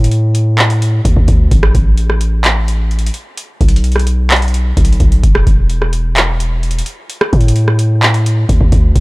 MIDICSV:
0, 0, Header, 1, 3, 480
1, 0, Start_track
1, 0, Tempo, 465116
1, 1562, Time_signature, 4, 2, 24, 8
1, 9289, End_track
2, 0, Start_track
2, 0, Title_t, "808-style bass"
2, 0, Program_c, 0, 38
2, 0, Note_on_c, 0, 45, 104
2, 1041, Note_off_c, 0, 45, 0
2, 1083, Note_on_c, 0, 38, 111
2, 1198, Note_off_c, 0, 38, 0
2, 1203, Note_on_c, 0, 38, 101
2, 1318, Note_off_c, 0, 38, 0
2, 1323, Note_on_c, 0, 38, 106
2, 1553, Note_off_c, 0, 38, 0
2, 1563, Note_on_c, 0, 33, 114
2, 1793, Note_off_c, 0, 33, 0
2, 1803, Note_on_c, 0, 33, 105
2, 3201, Note_off_c, 0, 33, 0
2, 3723, Note_on_c, 0, 35, 104
2, 4881, Note_off_c, 0, 35, 0
2, 4923, Note_on_c, 0, 35, 108
2, 5153, Note_off_c, 0, 35, 0
2, 5162, Note_on_c, 0, 35, 107
2, 5393, Note_off_c, 0, 35, 0
2, 5403, Note_on_c, 0, 28, 113
2, 5633, Note_off_c, 0, 28, 0
2, 5643, Note_on_c, 0, 28, 105
2, 7041, Note_off_c, 0, 28, 0
2, 7563, Note_on_c, 0, 45, 106
2, 8721, Note_off_c, 0, 45, 0
2, 8762, Note_on_c, 0, 38, 111
2, 8878, Note_off_c, 0, 38, 0
2, 8883, Note_on_c, 0, 38, 103
2, 8998, Note_off_c, 0, 38, 0
2, 9002, Note_on_c, 0, 38, 106
2, 9233, Note_off_c, 0, 38, 0
2, 9243, Note_on_c, 0, 33, 116
2, 9289, Note_off_c, 0, 33, 0
2, 9289, End_track
3, 0, Start_track
3, 0, Title_t, "Drums"
3, 43, Note_on_c, 9, 42, 81
3, 118, Note_off_c, 9, 42, 0
3, 118, Note_on_c, 9, 42, 69
3, 222, Note_off_c, 9, 42, 0
3, 358, Note_on_c, 9, 42, 77
3, 462, Note_off_c, 9, 42, 0
3, 603, Note_on_c, 9, 42, 41
3, 604, Note_on_c, 9, 39, 121
3, 706, Note_off_c, 9, 42, 0
3, 707, Note_off_c, 9, 39, 0
3, 723, Note_on_c, 9, 42, 71
3, 826, Note_off_c, 9, 42, 0
3, 847, Note_on_c, 9, 42, 84
3, 950, Note_off_c, 9, 42, 0
3, 1083, Note_on_c, 9, 36, 95
3, 1085, Note_on_c, 9, 42, 80
3, 1186, Note_off_c, 9, 36, 0
3, 1188, Note_off_c, 9, 42, 0
3, 1203, Note_on_c, 9, 36, 95
3, 1306, Note_off_c, 9, 36, 0
3, 1320, Note_on_c, 9, 42, 68
3, 1323, Note_on_c, 9, 36, 99
3, 1423, Note_off_c, 9, 42, 0
3, 1426, Note_off_c, 9, 36, 0
3, 1563, Note_on_c, 9, 36, 119
3, 1563, Note_on_c, 9, 42, 81
3, 1666, Note_off_c, 9, 36, 0
3, 1666, Note_off_c, 9, 42, 0
3, 1682, Note_on_c, 9, 37, 103
3, 1785, Note_off_c, 9, 37, 0
3, 1803, Note_on_c, 9, 36, 94
3, 1803, Note_on_c, 9, 42, 76
3, 1906, Note_off_c, 9, 36, 0
3, 1906, Note_off_c, 9, 42, 0
3, 2038, Note_on_c, 9, 42, 72
3, 2142, Note_off_c, 9, 42, 0
3, 2163, Note_on_c, 9, 37, 68
3, 2266, Note_off_c, 9, 37, 0
3, 2278, Note_on_c, 9, 42, 72
3, 2381, Note_off_c, 9, 42, 0
3, 2520, Note_on_c, 9, 42, 66
3, 2524, Note_on_c, 9, 39, 115
3, 2623, Note_off_c, 9, 42, 0
3, 2627, Note_off_c, 9, 39, 0
3, 2767, Note_on_c, 9, 42, 78
3, 2870, Note_off_c, 9, 42, 0
3, 3003, Note_on_c, 9, 42, 50
3, 3083, Note_off_c, 9, 42, 0
3, 3083, Note_on_c, 9, 42, 66
3, 3163, Note_off_c, 9, 42, 0
3, 3163, Note_on_c, 9, 42, 87
3, 3240, Note_off_c, 9, 42, 0
3, 3240, Note_on_c, 9, 42, 70
3, 3343, Note_off_c, 9, 42, 0
3, 3483, Note_on_c, 9, 42, 80
3, 3586, Note_off_c, 9, 42, 0
3, 3722, Note_on_c, 9, 36, 94
3, 3723, Note_on_c, 9, 42, 44
3, 3803, Note_off_c, 9, 42, 0
3, 3803, Note_on_c, 9, 42, 60
3, 3826, Note_off_c, 9, 36, 0
3, 3882, Note_off_c, 9, 42, 0
3, 3882, Note_on_c, 9, 42, 80
3, 3962, Note_off_c, 9, 42, 0
3, 3962, Note_on_c, 9, 42, 60
3, 4043, Note_off_c, 9, 42, 0
3, 4043, Note_on_c, 9, 42, 59
3, 4083, Note_on_c, 9, 37, 67
3, 4123, Note_off_c, 9, 42, 0
3, 4123, Note_on_c, 9, 42, 57
3, 4186, Note_off_c, 9, 37, 0
3, 4198, Note_off_c, 9, 42, 0
3, 4198, Note_on_c, 9, 42, 75
3, 4301, Note_off_c, 9, 42, 0
3, 4442, Note_on_c, 9, 42, 57
3, 4443, Note_on_c, 9, 39, 123
3, 4503, Note_off_c, 9, 42, 0
3, 4503, Note_on_c, 9, 42, 58
3, 4547, Note_off_c, 9, 39, 0
3, 4563, Note_off_c, 9, 42, 0
3, 4563, Note_on_c, 9, 42, 58
3, 4623, Note_off_c, 9, 42, 0
3, 4623, Note_on_c, 9, 42, 58
3, 4687, Note_off_c, 9, 42, 0
3, 4687, Note_on_c, 9, 42, 84
3, 4790, Note_off_c, 9, 42, 0
3, 4923, Note_on_c, 9, 36, 96
3, 4923, Note_on_c, 9, 42, 84
3, 5003, Note_off_c, 9, 42, 0
3, 5003, Note_on_c, 9, 42, 64
3, 5026, Note_off_c, 9, 36, 0
3, 5083, Note_off_c, 9, 42, 0
3, 5083, Note_on_c, 9, 42, 49
3, 5160, Note_on_c, 9, 46, 75
3, 5162, Note_on_c, 9, 36, 96
3, 5163, Note_off_c, 9, 42, 0
3, 5163, Note_on_c, 9, 42, 55
3, 5263, Note_off_c, 9, 46, 0
3, 5266, Note_off_c, 9, 36, 0
3, 5266, Note_off_c, 9, 42, 0
3, 5283, Note_on_c, 9, 42, 56
3, 5386, Note_off_c, 9, 42, 0
3, 5403, Note_on_c, 9, 36, 122
3, 5403, Note_on_c, 9, 42, 81
3, 5506, Note_off_c, 9, 36, 0
3, 5506, Note_off_c, 9, 42, 0
3, 5522, Note_on_c, 9, 37, 105
3, 5625, Note_off_c, 9, 37, 0
3, 5643, Note_on_c, 9, 36, 92
3, 5643, Note_on_c, 9, 42, 72
3, 5746, Note_off_c, 9, 36, 0
3, 5746, Note_off_c, 9, 42, 0
3, 5878, Note_on_c, 9, 42, 74
3, 5981, Note_off_c, 9, 42, 0
3, 6003, Note_on_c, 9, 37, 65
3, 6106, Note_off_c, 9, 37, 0
3, 6118, Note_on_c, 9, 42, 69
3, 6221, Note_off_c, 9, 42, 0
3, 6360, Note_on_c, 9, 42, 67
3, 6364, Note_on_c, 9, 39, 120
3, 6463, Note_off_c, 9, 42, 0
3, 6467, Note_off_c, 9, 39, 0
3, 6607, Note_on_c, 9, 42, 77
3, 6710, Note_off_c, 9, 42, 0
3, 6843, Note_on_c, 9, 42, 52
3, 6923, Note_off_c, 9, 42, 0
3, 6923, Note_on_c, 9, 42, 68
3, 7003, Note_off_c, 9, 42, 0
3, 7003, Note_on_c, 9, 42, 88
3, 7080, Note_off_c, 9, 42, 0
3, 7080, Note_on_c, 9, 42, 72
3, 7183, Note_off_c, 9, 42, 0
3, 7323, Note_on_c, 9, 42, 80
3, 7426, Note_off_c, 9, 42, 0
3, 7442, Note_on_c, 9, 37, 101
3, 7545, Note_off_c, 9, 37, 0
3, 7563, Note_on_c, 9, 36, 92
3, 7563, Note_on_c, 9, 42, 45
3, 7643, Note_off_c, 9, 42, 0
3, 7643, Note_on_c, 9, 42, 62
3, 7666, Note_off_c, 9, 36, 0
3, 7723, Note_off_c, 9, 42, 0
3, 7723, Note_on_c, 9, 42, 78
3, 7799, Note_off_c, 9, 42, 0
3, 7799, Note_on_c, 9, 42, 68
3, 7902, Note_off_c, 9, 42, 0
3, 7923, Note_on_c, 9, 37, 68
3, 8026, Note_off_c, 9, 37, 0
3, 8038, Note_on_c, 9, 42, 75
3, 8141, Note_off_c, 9, 42, 0
3, 8283, Note_on_c, 9, 42, 43
3, 8284, Note_on_c, 9, 39, 122
3, 8386, Note_off_c, 9, 42, 0
3, 8387, Note_off_c, 9, 39, 0
3, 8403, Note_on_c, 9, 42, 70
3, 8506, Note_off_c, 9, 42, 0
3, 8527, Note_on_c, 9, 42, 84
3, 8630, Note_off_c, 9, 42, 0
3, 8763, Note_on_c, 9, 36, 100
3, 8765, Note_on_c, 9, 42, 80
3, 8866, Note_off_c, 9, 36, 0
3, 8868, Note_off_c, 9, 42, 0
3, 8883, Note_on_c, 9, 36, 99
3, 8986, Note_off_c, 9, 36, 0
3, 9000, Note_on_c, 9, 42, 66
3, 9002, Note_on_c, 9, 36, 100
3, 9103, Note_off_c, 9, 42, 0
3, 9106, Note_off_c, 9, 36, 0
3, 9242, Note_on_c, 9, 36, 121
3, 9243, Note_on_c, 9, 42, 76
3, 9289, Note_off_c, 9, 36, 0
3, 9289, Note_off_c, 9, 42, 0
3, 9289, End_track
0, 0, End_of_file